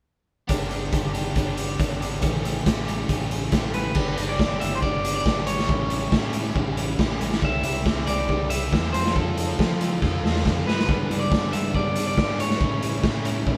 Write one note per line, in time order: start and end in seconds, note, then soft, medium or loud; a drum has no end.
0.48 0.89 G1 medium
0.48 0.90 B3 medium
0.48 0.71 D4 medium
0.48 0.70 G4 medium
0.48 kick medium
0.48 closed hi-hat medium
0.70 0.91 D4 medium
0.70 0.93 G4 medium
0.70 closed hi-hat soft
0.91 1.32 G1 medium
0.91 1.14 B3 medium
0.91 1.13 D4 medium
0.91 1.13 G4 medium
0.91 kick medium
0.91 closed hi-hat medium
1.13 1.34 B3 medium
1.13 1.35 D4 medium
1.13 1.37 G4 medium
1.13 closed hi-hat medium
1.36 1.75 G1 medium
1.36 1.57 B3 medium
1.36 1.57 D4 medium
1.36 1.56 G4 medium
1.36 kick medium
1.36 closed hi-hat medium
1.56 1.78 B3 medium
1.56 1.79 D4 medium
1.56 1.81 G4 medium
1.56 closed hi-hat medium
1.79 2.19 G#1 medium
1.79 2.21 B3 medium
1.79 2.01 D4 medium
1.79 2.00 G4 medium
1.79 kick medium
1.79 closed hi-hat medium
2.00 2.22 D4 medium
2.00 2.22 G4 medium
2.00 closed hi-hat medium
2.21 2.62 A1 medium
2.21 2.64 E3 medium
2.21 2.44 A3 medium
2.21 2.43 C#4 medium
2.21 2.42 G4 medium
2.21 kick medium
2.21 closed hi-hat medium
2.43 2.64 A3 medium
2.43 2.65 C#4 medium
2.43 2.65 G4 medium
2.43 closed hi-hat medium
2.65 3.05 A1 medium
2.65 2.87 E3 medium
2.65 2.86 A3 medium
2.65 2.86 C#4 medium
2.65 2.85 G4 medium
2.65 kick medium
2.65 snare loud
2.65 closed hi-hat medium
2.86 3.08 E3 medium
2.86 3.08 A3 medium
2.86 3.09 C#4 medium
2.86 3.10 G4 medium
2.86 closed hi-hat soft
3.09 3.48 A1 medium
3.09 3.31 E3 medium
3.09 3.30 A3 medium
3.09 3.29 C#4 medium
3.09 3.29 G4 medium
3.09 kick medium
3.09 closed hi-hat medium
3.30 3.50 E3 medium
3.30 3.51 A3 medium
3.30 3.51 C#4 medium
3.30 3.52 G4 medium
3.30 closed hi-hat medium
3.51 3.91 A1 medium
3.51 3.94 E3 medium
3.51 3.74 A3 medium
3.51 3.74 C#4 medium
3.51 3.73 G4 medium
3.51 kick medium
3.51 snare medium
3.51 closed hi-hat medium
3.74 3.95 A3 soft
3.74 3.95 C#4 medium
3.74 3.95 G4 medium
3.74 4.30 B4 medium
3.74 closed hi-hat medium
3.95 4.15 G1 medium
3.95 4.16 B3 medium
3.95 4.16 D4 medium
3.95 4.17 G4 loud
3.95 kick medium
3.95 crash medium
4.17 4.37 G1 medium
4.17 4.38 B3 medium
4.17 4.38 D4 medium
4.17 4.39 G4 medium
4.17 closed hi-hat medium
4.29 4.59 D5 medium
4.39 4.59 G1 medium
4.39 4.59 B3 medium
4.39 4.59 D4 medium
4.39 4.60 G4 medium
4.39 kick medium
4.39 snare medium
4.60 4.81 G1 medium
4.60 4.80 B3 medium
4.60 4.81 D4 medium
4.60 4.82 G4 medium
4.60 4.75 E5 medium
4.60 closed hi-hat medium
4.75 4.81 C5 medium
4.82 5.21 G1 medium
4.82 5.02 B3 medium
4.82 5.03 D4 medium
4.82 5.04 G4 medium
4.82 5.14 D5 medium
4.82 kick medium
5.04 5.23 B3 medium
5.04 5.24 D4 medium
5.04 5.25 G4 medium
5.04 closed hi-hat medium
5.16 5.46 D5 medium
5.24 5.65 G#1 medium
5.24 5.45 B3 medium
5.24 5.45 D4 medium
5.24 5.46 G4 medium
5.24 kick medium
5.24 snare medium
5.46 5.67 B3 medium
5.46 5.67 D4 medium
5.46 5.67 G4 medium
5.46 6.73 C#5 medium
5.46 closed hi-hat medium
5.59 snare medium
5.67 6.08 A1 medium
5.67 5.88 G3 medium
5.67 5.88 C#4 medium
5.67 5.89 E4 medium
5.67 5.90 G4 loud
5.67 kick medium
5.89 6.11 G3 medium
5.89 6.11 C#4 medium
5.89 6.12 E4 medium
5.89 6.12 G4 medium
5.89 closed hi-hat medium
6.12 6.51 A2 medium
6.12 6.33 G3 medium
6.12 6.32 C#4 medium
6.12 6.32 E4 medium
6.12 6.33 G4 medium
6.12 kick medium
6.12 snare loud
6.33 6.53 G3 medium
6.33 6.53 C#4 medium
6.33 6.53 E4 medium
6.33 6.55 G4 medium
6.33 closed hi-hat medium
6.54 6.94 A1 medium
6.54 6.76 G3 medium
6.54 6.76 C#4 medium
6.54 6.75 E4 medium
6.54 6.77 G4 medium
6.54 kick medium
6.76 6.99 G3 medium
6.76 6.98 C#4 medium
6.76 6.98 E4 medium
6.76 7.00 G4 medium
6.76 closed hi-hat medium
6.99 7.19 A1 medium
6.99 7.20 G3 medium
6.99 7.19 C#4 medium
6.99 7.20 E4 medium
6.99 7.21 G4 medium
6.99 kick loud
6.99 snare loud
7.20 7.40 A1 medium
7.20 7.42 G3 medium
7.20 7.41 C#4 medium
7.20 7.41 E4 medium
7.20 7.42 G4 medium
7.20 closed hi-hat medium
7.32 snare medium
7.42 7.62 C2 medium
7.42 7.63 G3 medium
7.42 7.64 C4 medium
7.42 7.63 E4 medium
7.42 7.64 G4 medium
7.42 7.64 E5 medium
7.42 kick medium
7.63 7.84 C2 medium
7.63 7.85 G3 medium
7.63 7.86 C4 medium
7.63 7.85 E4 medium
7.63 7.87 G4 medium
7.63 8.06 E5 loud
7.63 closed hi-hat medium
7.86 8.05 C2 medium
7.86 8.07 G3 medium
7.86 8.08 C4 medium
7.86 8.07 E4 medium
7.86 8.08 G4 medium
7.86 kick loud
7.86 snare loud
8.06 8.27 C2 medium
8.06 8.29 G3 medium
8.06 8.28 C4 medium
8.06 8.29 E4 medium
8.06 8.30 G4 medium
8.06 8.50 D5 medium
8.06 closed hi-hat medium
8.29 8.68 C2 medium
8.29 8.49 G3 medium
8.29 8.49 C4 medium
8.29 8.49 E4 medium
8.29 8.50 G4 medium
8.29 kick medium
8.49 8.71 G3 medium
8.49 8.71 C4 medium
8.49 8.71 E4 medium
8.49 8.72 G4 medium
8.49 8.92 E5 medium
8.49 closed hi-hat medium
8.72 8.92 E2 medium
8.72 8.93 G3 medium
8.72 8.93 C4 medium
8.72 8.93 E4 medium
8.72 8.94 G4 medium
8.72 kick medium
8.72 snare medium
8.93 9.52 F2 medium
8.93 9.14 F3 medium
8.93 9.14 C4 medium
8.93 9.14 F4 medium
8.93 9.14 A4 medium
8.93 9.16 C5 medium
8.93 closed hi-hat medium
9.06 snare medium
9.15 9.36 F3 medium
9.15 9.36 C4 medium
9.15 9.36 F4 medium
9.15 9.37 A4 loud
9.15 9.77 A4 medium
9.15 kick medium
9.37 9.56 F3 medium
9.37 9.57 C4 medium
9.37 9.57 F4 medium
9.37 9.58 A4 medium
9.37 closed hi-hat medium
9.58 9.79 F3 medium
9.58 9.97 F3 medium
9.58 9.79 C4 medium
9.58 9.79 F4 medium
9.58 9.80 A4 medium
9.58 kick medium
9.58 snare medium
9.80 10.00 F3 medium
9.80 10.00 C4 medium
9.80 10.00 F4 medium
9.80 10.01 A4 medium
9.80 closed hi-hat medium
10.01 10.22 F2 medium
10.01 10.22 F3 medium
10.01 10.22 C4 medium
10.01 10.22 F4 medium
10.01 10.23 A4 medium
10.01 kick medium
10.01 snare soft
10.23 10.43 E2 medium
10.23 10.43 F3 medium
10.23 10.43 C4 medium
10.23 10.44 F4 medium
10.23 10.44 A4 medium
10.23 snare medium
10.36 snare medium
10.44 10.65 F2 medium
10.44 10.65 F3 medium
10.44 10.66 C4 medium
10.44 10.66 F4 medium
10.44 10.66 A4 medium
10.44 kick medium
10.44 snare medium
10.66 10.86 G2 medium
10.66 10.87 F3 medium
10.66 10.87 C4 medium
10.66 10.87 F4 medium
10.66 10.88 A4 medium
10.66 11.23 B4 medium
10.66 snare medium
10.79 snare medium
10.88 11.08 G2 medium
10.88 11.10 G3 medium
10.88 11.09 B3 medium
10.88 11.09 D4 medium
10.88 kick loud
11.10 11.29 G2 medium
11.10 11.30 G3 medium
11.10 11.29 B3 medium
11.10 11.30 D4 medium
11.10 closed hi-hat medium
11.20 11.52 D5 medium
11.31 11.51 G2 medium
11.31 11.52 G3 medium
11.31 11.52 B3 medium
11.31 11.52 D4 medium
11.31 kick loud
11.31 snare loud
11.52 11.73 G2 medium
11.52 11.74 G3 medium
11.52 11.73 B3 medium
11.52 11.74 D4 medium
11.52 11.75 E5 medium
11.52 closed hi-hat medium
11.74 12.13 G2 medium
11.74 11.96 G3 medium
11.74 11.95 B3 medium
11.74 11.96 D4 medium
11.74 12.06 D5 medium
11.74 kick medium
11.96 12.17 G3 medium
11.96 12.17 B3 medium
11.96 12.17 D4 medium
11.96 closed hi-hat medium
12.07 12.40 D5 medium
12.18 12.56 G#2 medium
12.18 12.38 G3 medium
12.18 12.38 B3 medium
12.18 12.38 D4 medium
12.18 kick medium
12.18 snare medium
12.38 12.60 G3 medium
12.38 12.59 B3 medium
12.38 12.60 D4 medium
12.38 13.57 C#5 medium
12.38 closed hi-hat medium
12.50 snare medium
12.61 12.99 A2 medium
12.61 12.82 G3 medium
12.61 12.81 C#4 medium
12.61 12.82 E4 medium
12.61 kick loud
12.82 13.03 G3 medium
12.82 13.03 C#4 medium
12.82 13.03 E4 medium
12.82 closed hi-hat medium
13.03 13.42 A2 medium
13.03 13.24 G3 medium
13.03 13.24 C#4 medium
13.03 13.25 E4 medium
13.03 kick loud
13.03 snare loud
13.25 13.45 G3 medium
13.25 13.45 C#4 medium
13.25 13.45 E4 medium
13.25 closed hi-hat medium
13.46 13.57 A2 medium
13.46 13.57 G3 medium
13.46 13.57 C#4 medium
13.46 13.57 E4 medium
13.46 kick medium